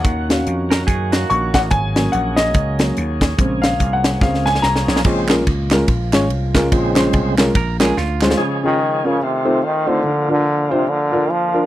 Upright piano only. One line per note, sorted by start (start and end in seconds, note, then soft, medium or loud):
0.00 0.43 F#5 medium
0.29 1.68 C#4 soft
0.29 1.67 F#4 soft
0.29 1.68 F5 medium
1.30 1.55 C#6 loud
1.54 1.59 F#5 loud
1.71 2.14 G#5 loud
1.96 2.52 F#3 medium
1.96 2.52 A#3 soft
1.96 2.53 C#4 medium
2.12 2.36 F#5 medium
2.36 2.92 D#5 loud
2.79 2.95 F#3 soft
2.79 2.95 A#3 soft
2.79 2.95 C#4 medium
3.38 3.68 C#3 medium
3.38 3.69 G#3 soft
3.38 3.69 C4 medium
3.62 3.91 F5 medium
3.93 4.19 F#5 medium
4.22 4.44 C#3 soft
4.22 4.44 G#3 soft
4.22 4.45 C4 medium
4.22 4.45 F5 medium
4.46 4.64 G#5 loud
4.62 5.02 A#5 loud
5.04 5.67 A#2 medium
5.29 5.41 G#3 medium
5.29 5.41 C#4 medium
5.29 5.41 F4 medium
5.29 5.41 A#4 medium
5.72 5.83 G#3 medium
5.72 5.83 C#4 medium
5.72 5.84 F4 medium
5.72 5.83 A#4 loud
6.13 6.24 G#3 medium
6.13 6.25 C#4 medium
6.13 6.25 F4 medium
6.13 6.25 C#5 loud
6.55 6.66 G#3 medium
6.55 6.66 C#4 medium
6.55 6.66 F4 medium
6.55 6.67 A#4 loud
6.71 7.34 A#2 medium
6.96 7.08 G#3 medium
6.96 7.08 C#4 medium
6.96 7.08 F4 medium
6.96 7.08 C5 medium
7.39 7.50 G#3 medium
7.39 7.50 C#4 medium
7.39 7.50 F4 medium
7.39 7.50 A#4 loud
7.80 7.91 G#3 medium
7.80 7.91 C#4 medium
7.80 7.91 F4 medium
7.80 7.92 A#4 loud
8.22 8.33 G#3 medium
8.22 8.33 C#4 medium
8.22 8.34 F4 medium
8.22 8.34 C5 medium
8.39 9.01 C#3 medium
8.63 8.75 C#4 medium
8.63 8.75 F4 medium
8.63 8.75 G#4 medium
9.04 9.16 C#4 medium
9.04 9.16 F4 medium
9.04 9.16 A#4 medium
9.45 9.57 A3 medium
9.45 9.57 C4 medium
9.45 9.57 D#4 medium
9.45 9.57 F4 medium
9.45 9.57 C5 medium
9.86 9.99 A3 medium
9.86 9.99 C4 medium
9.86 9.99 D#4 medium
9.86 9.99 F4 medium
9.86 9.99 C5 medium
10.03 10.66 D3 medium
10.29 10.40 D4 medium
10.29 10.40 F4 medium
10.29 10.41 A#4 medium
10.71 10.82 D4 medium
10.71 10.82 F4 medium
10.71 10.83 C5 medium
11.12 11.24 D4 medium
11.12 11.24 F4 medium
11.12 11.24 A#4 medium
11.53 11.65 D4 medium
11.53 11.65 F4 medium
11.53 11.66 A#4 medium